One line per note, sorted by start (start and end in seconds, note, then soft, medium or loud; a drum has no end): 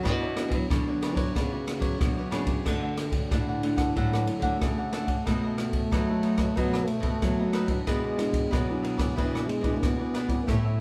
0.03 0.54 B2 loud
0.03 0.66 E3 medium
0.03 0.67 B3 medium
0.03 0.19 D4 medium
0.03 0.32 D4 medium
0.03 0.32 F#4 medium
0.03 0.19 B4 medium
0.03 0.20 C#5 medium
0.03 0.33 C#5 medium
0.03 0.20 D5 medium
0.03 kick medium
0.03 cross-stick medium
0.03 ride soft
0.21 0.35 B4 soft
0.21 0.36 C#5 soft
0.21 0.36 D5 soft
0.36 0.68 D4 medium
0.36 0.68 F#4 medium
0.36 0.68 C#5 medium
0.36 muted cavaquinho stroke soft
0.36 cross-stick medium
0.36 ride soft
0.48 0.65 F#3 medium
0.48 kick medium
0.48 ride medium
0.69 1.14 B2 medium
0.69 1.36 D3 medium
0.69 1.32 F#3 medium
0.69 0.85 D4 medium
0.69 0.85 B4 medium
0.69 0.85 C#5 medium
0.69 0.86 D5 medium
0.69 kick medium
0.69 cross-stick medium
0.69 ride soft
0.87 1.48 D4 medium
0.87 1.47 F#4 medium
0.87 1.01 B4 soft
0.87 1.01 C#5 soft
0.87 1.48 C#5 medium
0.87 1.02 D5 soft
1.01 1.17 D4 soft
1.01 1.15 B4 soft
1.01 1.15 C#5 medium
1.01 1.14 D5 medium
1.01 cross-stick medium
1.01 ride soft
1.14 1.30 F#3 medium
1.14 1.33 B4 medium
1.14 1.33 C#5 medium
1.14 1.32 D5 medium
1.14 kick medium
1.14 ride medium
1.35 2.02 C#3 medium
1.35 1.98 B3 medium
1.35 1.77 B3 medium
1.35 1.50 D4 medium
1.35 1.51 B4 medium
1.35 1.51 C#5 medium
1.35 1.50 D5 medium
1.35 kick medium
1.35 cross-stick medium
1.35 ride soft
1.52 1.96 F#4 medium
1.52 1.65 B4 soft
1.52 1.65 C#5 soft
1.52 1.96 C#5 medium
1.52 1.66 D5 soft
1.66 muted cavaquinho stroke soft
1.66 cross-stick medium
1.66 ride medium
1.79 1.95 F#3 medium
1.79 2.14 B4 medium
1.79 2.14 C#5 medium
1.79 2.13 D5 medium
1.79 kick medium
1.79 ride soft
2.00 2.30 B2 medium
2.00 2.65 F#3 medium
2.00 2.63 F#3 medium
2.00 2.20 D4 medium
2.00 2.20 F#4 medium
2.00 2.20 C#5 medium
2.00 kick medium
2.00 cross-stick medium
2.00 ride soft
2.17 2.30 B4 soft
2.17 2.31 C#5 soft
2.17 2.31 D5 soft
2.31 2.62 C#3 medium
2.31 2.47 D4 medium
2.31 2.60 D4 medium
2.31 2.60 F#4 medium
2.31 2.46 B4 medium
2.31 2.45 C#5 medium
2.31 2.60 C#5 medium
2.31 2.45 D5 medium
2.31 cross-stick medium
2.31 ride soft
2.46 2.63 B4 soft
2.46 2.63 C#5 soft
2.46 2.63 D5 soft
2.46 kick medium
2.46 ride soft
2.65 3.21 D3 medium
2.65 3.98 D3 medium
2.65 3.28 D3 medium
2.65 3.10 A3 medium
2.65 2.80 D4 medium
2.65 3.10 D4 medium
2.65 3.10 F#4 medium
2.65 2.81 A4 medium
2.65 2.81 D5 medium
2.65 2.81 F#5 medium
2.65 kick medium
2.65 cross-stick medium
2.65 crash medium
2.82 2.96 A4 soft
2.82 2.96 D5 soft
2.82 2.96 F#5 soft
2.96 muted cavaquinho stroke soft
2.96 cross-stick medium
2.96 ride soft
3.11 3.30 A3 medium
3.11 3.57 D4 medium
3.11 3.57 F#4 medium
3.11 kick medium
3.11 ride soft
3.31 3.86 A2 medium
3.31 3.61 A3 medium
3.31 3.46 D4 medium
3.31 3.46 A4 medium
3.31 3.46 D5 medium
3.31 3.47 F#5 medium
3.31 kick medium
3.31 cross-stick medium
3.31 ride soft
3.48 3.62 A4 soft
3.48 3.62 D5 soft
3.48 3.63 F#5 soft
3.62 3.90 A3 medium
3.62 3.78 D4 soft
3.62 3.91 D4 medium
3.62 3.91 F#4 medium
3.62 3.77 A4 soft
3.62 3.77 D5 soft
3.62 3.76 F#5 medium
3.62 ride soft
3.77 3.94 A4 medium
3.77 3.94 D5 medium
3.77 3.93 F#5 medium
3.77 kick medium
3.77 cross-stick medium
3.77 ride soft
3.96 4.24 A2 medium
3.96 4.58 D3 medium
3.96 4.61 F#3 loud
3.96 4.27 A3 medium
3.96 4.11 D4 medium
3.96 4.27 D4 soft
3.96 4.27 F#4 medium
3.96 4.11 A4 medium
3.96 4.12 D5 medium
3.96 4.12 F#5 medium
3.96 kick medium
3.96 ride soft
4.13 4.27 A4 soft
4.13 4.27 D5 soft
4.13 4.27 F#5 medium
4.13 cross-stick medium
4.27 muted cavaquinho stroke soft
4.27 ride soft
4.40 4.56 D3 medium
4.40 4.60 A3 medium
4.40 4.87 D4 medium
4.40 4.88 F#4 medium
4.40 4.75 D5 medium
4.40 4.75 F#5 medium
4.40 kick medium
4.40 ride soft
4.44 4.76 A4 medium
4.61 5.17 C#3 medium
4.61 5.22 A3 medium
4.61 4.92 A3 medium
4.61 kick medium
4.61 cross-stick medium
4.61 ride soft
4.78 4.92 A4 soft
4.78 4.92 D5 soft
4.78 4.93 F#5 medium
4.92 5.13 A3 soft
4.92 5.08 D4 medium
4.92 5.13 D4 medium
4.92 5.13 F#4 medium
4.92 5.07 A4 medium
4.92 5.06 D5 medium
4.92 5.05 F#5 medium
4.92 cross-stick medium
4.92 ride soft
5.06 5.24 A4 soft
5.06 5.24 D5 soft
5.06 5.23 F#5 soft
5.06 kick medium
5.06 ride soft
5.25 5.88 B2 medium
5.25 5.82 B2 medium
5.25 5.54 A3 medium
5.25 6.58 A3 loud
5.25 5.41 D#4 medium
5.25 5.54 D#4 medium
5.25 5.54 F#4 medium
5.25 5.42 A4 medium
5.25 5.42 B4 medium
5.25 5.42 D#5 medium
5.25 kick medium
5.25 cross-stick medium
5.25 ride soft
5.43 5.56 A4 soft
5.43 5.57 B4 soft
5.43 5.57 D#5 soft
5.57 6.02 A3 medium
5.57 6.03 D#4 medium
5.57 6.03 F#4 medium
5.57 muted cavaquinho stroke soft
5.57 cross-stick medium
5.57 ride soft
5.73 kick medium
5.73 ride soft
5.91 6.47 F#3 medium
5.91 6.54 F#3 medium
5.91 6.06 D#4 medium
5.91 6.07 A4 medium
5.91 6.07 B4 medium
5.91 6.07 D#5 medium
5.91 kick medium
5.91 cross-stick medium
5.91 ride soft
6.09 6.52 A3 medium
6.09 6.53 D#4 medium
6.09 6.53 F#4 medium
6.09 6.22 A4 soft
6.09 6.23 B4 soft
6.09 6.23 D#5 soft
6.23 6.38 D#4 soft
6.23 6.37 A4 soft
6.23 6.37 B4 medium
6.23 6.36 D#5 medium
6.23 ride soft
6.37 6.54 A4 medium
6.37 6.54 B4 medium
6.37 6.54 D#5 medium
6.37 kick medium
6.37 cross-stick medium
6.37 ride soft
6.55 7.19 B2 medium
6.55 6.85 F#3 medium
6.55 6.87 A3 medium
6.55 6.88 B3 loud
6.55 6.71 D#4 medium
6.55 6.88 D#4 medium
6.55 6.88 F#4 medium
6.55 6.71 A4 medium
6.55 6.72 B4 medium
6.55 6.72 D#5 medium
6.55 kick medium
6.55 ride soft
6.74 6.86 A4 soft
6.74 6.87 B4 soft
6.74 6.87 D#5 soft
6.74 cross-stick medium
6.86 7.59 A3 loud
6.86 muted cavaquinho stroke soft
6.86 ride soft
7.00 7.16 B2 medium
7.00 7.31 A3 medium
7.00 7.32 D#4 medium
7.00 7.32 F#4 medium
7.00 7.36 A4 medium
7.00 7.35 B4 medium
7.00 7.35 D#5 medium
7.00 kick medium
7.00 ride soft
7.22 7.84 F#3 medium
7.22 7.78 F#3 medium
7.22 kick medium
7.22 cross-stick medium
7.22 ride soft
7.39 7.66 A3 medium
7.39 7.66 D#4 medium
7.39 7.66 F#4 medium
7.39 7.52 A4 soft
7.39 7.53 B4 soft
7.39 7.53 D#5 soft
7.53 7.69 D#4 medium
7.53 7.68 A4 medium
7.53 7.68 B4 medium
7.53 7.67 D#5 medium
7.53 cross-stick medium
7.53 ride soft
7.68 8.13 G#3 medium
7.68 8.13 D4 medium
7.68 8.13 E4 medium
7.68 7.85 A4 soft
7.68 7.85 B4 soft
7.68 7.84 D#5 soft
7.68 kick medium
7.68 ride soft
7.87 8.49 B2 medium
7.87 8.43 B2 medium
7.87 8.54 G#3 loud
7.87 8.02 E4 medium
7.87 8.02 G#4 medium
7.87 8.02 B4 medium
7.87 8.03 D5 medium
7.87 kick medium
7.87 cross-stick medium
7.87 ride soft
8.04 8.17 G#4 soft
8.04 8.18 B4 soft
8.04 8.18 D5 soft
8.17 8.49 G#3 medium
8.17 8.49 D4 medium
8.17 8.50 E4 medium
8.17 muted cavaquinho stroke soft
8.17 cross-stick medium
8.17 ride soft
8.33 kick medium
8.33 ride medium
8.51 9.08 B2 medium
8.51 9.14 B2 medium
8.51 9.16 F#3 medium
8.51 8.66 E4 medium
8.51 8.67 G#4 medium
8.51 8.67 B4 medium
8.51 8.67 D5 medium
8.51 kick medium
8.51 cross-stick medium
8.51 ride soft
8.69 9.13 G#3 medium
8.69 9.13 D4 medium
8.69 9.13 E4 medium
8.69 8.82 G#4 soft
8.69 8.82 B4 soft
8.69 8.83 D5 soft
8.82 8.99 E4 soft
8.82 8.98 G#4 soft
8.82 8.97 B4 soft
8.82 8.96 D5 medium
8.82 ride soft
8.98 9.15 G#4 medium
8.98 9.15 B4 medium
8.98 9.14 D5 medium
8.98 kick medium
8.98 cross-stick medium
8.98 ride soft
9.16 9.46 B2 medium
9.16 9.80 B2 medium
9.16 9.49 E3 medium
9.16 9.61 G#3 soft
9.16 9.62 D4 medium
9.16 9.32 E4 medium
9.16 9.62 E4 medium
9.16 9.32 G#4 medium
9.16 9.32 B4 medium
9.16 9.33 D5 medium
9.16 kick medium
9.16 ride soft
9.34 9.47 G#4 soft
9.34 9.47 B4 soft
9.34 9.47 D5 soft
9.34 cross-stick medium
9.47 9.83 G#3 medium
9.47 muted cavaquinho stroke soft
9.47 ride soft
9.61 9.77 B2 medium
9.61 9.93 G#3 medium
9.61 9.93 D4 medium
9.61 9.93 E4 medium
9.61 9.97 G#4 medium
9.61 9.96 B4 medium
9.61 9.96 D5 medium
9.61 kick medium
9.61 ride soft
9.82 10.38 B2 medium
9.82 10.45 B2 medium
9.82 10.48 B3 medium
9.82 kick medium
9.82 cross-stick medium
9.82 ride soft
9.99 10.27 G#3 medium
9.99 10.27 D4 medium
9.99 10.27 E4 medium
9.99 10.13 G#4 soft
9.99 10.14 B4 soft
9.99 10.14 D5 soft
10.14 10.30 E4 medium
10.14 10.29 G#4 medium
10.14 10.28 B4 medium
10.14 10.27 D5 medium
10.14 cross-stick medium
10.14 ride soft
10.28 10.74 G3 medium
10.28 10.74 C#4 medium
10.28 10.74 E4 medium
10.28 10.46 G#4 soft
10.28 10.45 B4 soft
10.28 10.45 D5 soft
10.28 kick medium
10.28 ride soft
10.46 10.80 A2 medium
10.46 10.80 A3 medium
10.46 10.62 G4 medium
10.46 10.63 A4 medium
10.46 10.63 C#5 medium
10.46 10.63 E5 medium
10.46 kick medium
10.46 cross-stick medium
10.46 ride soft
10.65 10.78 A4 soft
10.65 10.78 C#5 soft
10.65 10.79 E5 soft